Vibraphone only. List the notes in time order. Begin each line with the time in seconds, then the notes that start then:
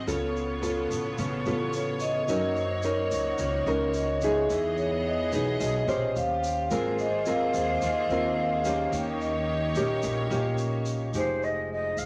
1.19 B4
1.73 C#5
2.01 D#5
2.56 C5
2.85 C#5
3.40 C#5
3.95 D#5
4.23 E5
4.77 C#5
5.06 D#5
5.60 D#5
6.16 F5
6.45 G5
7.00 D#5
7.83 D#5
8.37 F5
8.65 G5
9.21 D#5
9.49 G5
11.12 D#4 G#4
11.18 C5